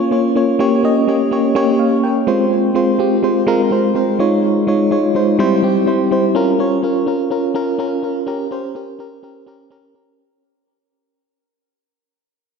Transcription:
Already playing: A#3 C#4 F4 C#5
0.11 A#3 C#4 F4 C#5
0.35 A#3 C#4 F4 C#5
0.59 A#3 C#4 G4 C#5
0.83 A#3 C#4 G4 D#5
1.08 A#3 C#4 G4 C#5
1.31 A#3 C#4 G4 C#5
1.55 A#3 C#4 G4 C#5
1.79 F5
2.04 A#4 G5
2.27 G#3 C4 F4 C5
2.75 G#3 C4 F4 C5
2.99 G#3 C4 F4 G4
3.23 G#3 C4 F4 C5
3.47 G#3 C4 F4 A#4
3.71 G#3 C4 F4 C5
3.95 G#3 C4 F4 C5
4.19 G#3 D#4 F4 C#5
4.67 G#3 D#4 F4 C#5
4.91 G#3 D#4 F4 C#5
5.15 G#3 D#4 F4 C5
5.39 G3 C4 E4 C5
5.62 G3 C4 E4 G4
5.86 G3 C4 E4 C5
6.11 G3 C4 E4 C5
6.35 C#4 F4 A#4
6.59 C#4 F4 C#5
6.83 C#4 F4 A#4
7.06 C#4 F4 A#4
7.30 C#4 F4 A#4
7.54 C#4 F4 A#4
7.78 C#4 F4 A#4
8.03 C#4 F4 A#4
8.27 C#4 G4 A#4
8.51 C#4 G4 C5
8.75 C#4 G4 A#4
8.99 C#4 G4 A#4
9.23 C#4 G4 A#4
9.46 C#4 G4 A#4
9.70 C#4 G4 A#4
9.94 C#4 G4 A#4

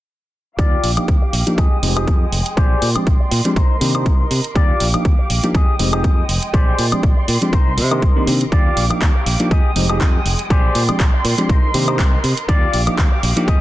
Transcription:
0.58 D#2 F4 G4 D5 F5 D6, kick, closed hi-hat
0.84 A#1, open hi-hat
0.97 F3 A#3 D4 D#4 G4, muted fingered electric bass stroke, closed hi-hat, high woodblock
1.08 D#2, kick, closed hi-hat
1.22 muted clean electric guitar stroke
1.33 A#1, muted clean electric guitar stroke, open hi-hat
1.46 F3 A#3 D4 D#4 G4, closed hi-hat
1.58 F2 G#3 G4 G#4 D#5 G5 D#6, kick, closed hi-hat
1.82 F1 F3 G#3 C4 D#4 G4, open hi-hat
1.96 F3 G#3 C4 D#4 G4 G#4 D#5, closed hi-hat, high woodblock
2.08 F2, kick, closed hi-hat
2.32 F1, open hi-hat
2.46 closed hi-hat
2.57 A#1 G4 G#4 C5 D5 C6, kick, closed hi-hat
2.82 A#2, open hi-hat
2.95 F3 G#3 C4 D4 G4, muted fingered electric bass stroke, closed hi-hat, high woodblock
3.07 A#1, kick, closed hi-hat
3.20 muted clean electric guitar stroke
3.31 A#2, muted clean electric guitar stroke, open hi-hat
3.45 F3 G#3 C4 D4 G4, closed hi-hat
3.56 C2 D#4 A#4 C5 D#5, kick, closed hi-hat
3.81 C3 D#3 A#3 C4 D4 G4, open hi-hat
3.94 D#3 A#3 C4 D4 D#4 G4 A#4 C5, closed hi-hat, high woodblock
4.06 C2, kick, closed hi-hat
4.31 C3, open hi-hat
4.44 closed hi-hat
4.55 D#2 F4 G4 D5 F5 D6, kick, closed hi-hat
4.80 A#1, open hi-hat
4.94 F3 A#3 D4 D#4 G4, muted fingered electric bass stroke, closed hi-hat, high woodblock
5.05 D#2, kick, closed hi-hat
5.18 muted clean electric guitar stroke
5.30 A#1, muted clean electric guitar stroke, open hi-hat
5.43 F3 A#3 D4 D#4 G4, closed hi-hat
5.54 F2 G#3 G4 G#4 D#5 G5 D#6, kick, closed hi-hat
5.79 F1 F3 G#3 C4 D#4 G4, open hi-hat
5.93 F3 G#3 C4 D#4 G4 G#4 D#5, closed hi-hat, high woodblock
6.04 F2, kick, closed hi-hat
6.29 F1, open hi-hat
6.43 closed hi-hat
6.53 A#1 G4 G#4 C5 D5 C6, kick, closed hi-hat
6.78 A#2, open hi-hat
6.92 F3 G#3 C4 D4 G4, muted fingered electric bass stroke, closed hi-hat, high woodblock
7.03 A#1, kick, closed hi-hat
7.17 muted clean electric guitar stroke
7.28 A#2, muted clean electric guitar stroke, open hi-hat
7.41 F3 G#3 C4 D4 G4, closed hi-hat
7.53 C2 D#4 A#4 C5 D#5, kick, closed hi-hat
7.77 C3, open hi-hat
7.91 D#3 A#3 C4 D4 D#4 G4 A#4 C5, closed hi-hat, high woodblock
8.02 C2, kick, closed hi-hat
8.16 D#3 A#3 C4 D4 G4
8.27 C3 D#3 A#3 C4 D4 G4, open hi-hat
8.41 closed hi-hat
8.52 D#2 F4 G4 D5 F5 D6, kick, closed hi-hat
8.77 A#1, open hi-hat
8.90 F3 A#3 D4 D#4 G4, muted fingered electric bass stroke, closed hi-hat, high woodblock
9.02 D#2, kick, clap, closed hi-hat
9.15 muted clean electric guitar stroke
9.26 A#1, muted clean electric guitar stroke, open hi-hat
9.39 F3 A#3 D4 D#4 G4, closed hi-hat
9.51 F2 G#3 G4 G#4 D#5 G5 D#6, kick, closed hi-hat
9.76 F1 F3 G#3 C4 D#4 G4, open hi-hat
9.89 F3 G#3 C4 D#4 G4 G#4 D#5, closed hi-hat, high woodblock
10.01 F2, kick, clap, closed hi-hat
10.25 F1, open hi-hat
10.39 closed hi-hat
10.50 A#1 G4 G#4 C5 D5 C6, kick, closed hi-hat
10.75 A#2, open hi-hat
10.88 F3 G#3 C4 D4 G4, muted fingered electric bass stroke, closed hi-hat, high woodblock
11.00 A#1, kick, clap, closed hi-hat
11.13 muted clean electric guitar stroke
11.25 A#2, muted clean electric guitar stroke, open hi-hat
11.38 F3 G#3 C4 D4 G4, closed hi-hat
11.49 C2 D#4 A#4 C5 D#5, kick, closed hi-hat
11.74 C3 D#3 A#3 C4 D4 G4, open hi-hat
11.87 D#3 A#3 C4 D4 D#4 G4 A#4 C5, closed hi-hat, high woodblock
11.99 C2, kick, clap, closed hi-hat
12.24 C3, open hi-hat
12.37 closed hi-hat
12.48 D#2 F4 G4 D5 F5 D6, kick, closed hi-hat
12.73 A#1, open hi-hat
12.87 F3 A#3 D4 D#4 G4, muted fingered electric bass stroke, closed hi-hat, high woodblock
12.98 D#2, kick, clap, closed hi-hat
13.11 muted clean electric guitar stroke
13.23 A#1, muted clean electric guitar stroke, open hi-hat
13.36 F3 A#3 D4 D#4 G4, closed hi-hat
13.47 F2 G#3 G4 G#4 D#5 G5 D#6, kick, closed hi-hat

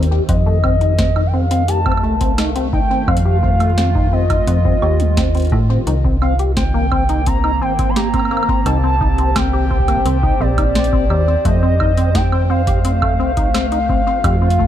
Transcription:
Already playing: D#2 D#3 A#3 C4 G4 C5
0.03 closed hi-hat
0.11 G4
0.29 F2 C4 D#5, kick, closed hi-hat
0.46 A3
0.64 C4, kick, high woodblock
0.81 D#4, closed hi-hat
0.99 C4, kick, snare, closed hi-hat
1.10 A3
1.16 D#4, high woodblock
1.27 G5
1.33 C4 F5
1.51 C4, closed hi-hat
1.68 G4 A5, closed hi-hat
1.86 C4, kick, high woodblock
1.92 high woodblock
1.97 high woodblock
2.03 C2 A3
2.21 C4, kick, closed hi-hat
2.38 D#4, snare, closed hi-hat, high woodblock
2.56 C4, closed hi-hat
2.73 D#4 G5, kick
2.80 F4
2.90 C4
3.08 F2 C4 F5, kick, high woodblock
3.17 closed hi-hat
3.25 G4
3.43 C4, kick
3.60 A3, closed hi-hat, high woodblock
3.78 C4, snare, closed hi-hat
3.95 D#4, kick
4.13 C4 D#5
4.30 D#4, kick, closed hi-hat, high woodblock
4.47 F2 C4, closed hi-hat
4.65 C4, kick
4.82 D#2 G4, high woodblock
5.00 G3, closed hi-hat
5.17 C4, kick, snare, closed hi-hat
5.35 C4, closed hi-hat
5.37 closed hi-hat
5.40 closed hi-hat
5.42 closed hi-hat
5.45 closed hi-hat
5.47 closed hi-hat
5.52 A2 A3, kick
5.70 C4
5.87 C2 D#4, closed hi-hat
6.04 C4, kick
6.21 C4 F5, high woodblock
6.39 G4, closed hi-hat
6.54 A#3 C4 G5, kick, snare, closed hi-hat
6.74 A#3
6.92 C4, kick, high woodblock
7.09 D#4, closed hi-hat
7.26 C4 A#5, kick, closed hi-hat
7.44 D#4, high woodblock
7.52 C5
7.61 G1 C4 G5
7.79 C4, kick, closed hi-hat
7.89 C6
7.96 G4 A#5, snare, closed hi-hat
8.14 C4, kick, closed hi-hat, high woodblock
8.19 high woodblock
8.25 high woodblock
8.31 A#3, high woodblock
8.37 G4, high woodblock
8.43 high woodblock
8.49 C4, kick
8.66 C2 D#4 A5, closed hi-hat, high woodblock
8.83 C4
9.01 D#4, kick
9.18 C4, closed hi-hat
9.36 C4 G5, kick, snare, closed hi-hat, high woodblock
9.53 G4
9.71 C4, kick
9.79 kick
9.88 A#3, kick, closed hi-hat, high woodblock
9.97 kick
10.05 C2 C4, closed hi-hat
10.23 D#4, kick
10.40 A#1 C4 D5
10.58 D#4, kick, closed hi-hat, high woodblock
10.75 C4, snare, closed hi-hat
10.84 closed hi-hat
10.93 C4, kick
11.10 D#2 G4, high woodblock
11.28 C4
11.45 F2 A3 D#5, kick, closed hi-hat
11.63 C4
11.80 D#4, kick, high woodblock
11.97 C4, closed hi-hat
12.15 D#4 G5, kick, snare, closed hi-hat
12.32 A3 C4, high woodblock
12.50 C4 F5
12.67 G4, kick, closed hi-hat
12.85 C4, closed hi-hat
13.02 A3, kick, high woodblock
13.19 C2 C4
13.37 D#4, kick, closed hi-hat
13.54 C4, snare, closed hi-hat, high woodblock
13.72 D#4, closed hi-hat
13.89 C4, kick
13.96 F4
14.07 C4
14.24 F2 G4, kick, closed hi-hat, high woodblock
14.42 C4
14.50 closed hi-hat
14.59 A3, kick

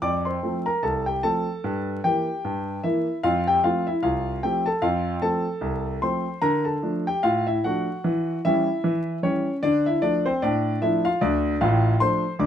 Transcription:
0.02 F2 D5 D6
0.25 C5 C6
0.43 F3 A3 C4
0.66 A#4 A#5
0.83 C2 A4 A5
1.06 G4 G5
1.23 F3 A3 C4 A4 A5
1.64 G2
2.04 E3 A#3 G4 G5
2.45 G2
2.84 E3 A#3 E4 E5
3.23 F2 F4 F5
3.47 G4 G5
3.64 F3 A3 C4 F4 F5
3.87 E4 E5
4.03 C2 F4 F5
4.43 F3 A3 C4 G4 G5
4.66 A4 A5
4.82 F2 F4 F5
5.22 F3 A3 C4 A4 A5
5.61 C2
6.02 F3 A3 C4 C5 C6
6.42 D3 A#4 A#5
6.65 A4 A5
6.83 F3 A3 D4
7.07 G4 G5
7.23 A2 F4 F5
7.47 E4 E5
7.64 F3 A3 D4 F#4 F#5
8.04 E3
8.45 E3 G3 C#4 E4 E5
8.84 E3
9.23 E3 G3 C#4 C#5
9.63 D3 D4 D5
9.86 E4 E5
10.02 F3 A3 D4 D5
10.26 C4 C5
10.42 A2 D4 D5
10.82 F3 A3 D4 E4 E5
11.05 F4 F5
11.21 D2 D3 D4 D5
11.61 A1 A2 F4 F5
12.00 F3 A3 D4 C5 C6
12.39 D2 D3 D5 D6

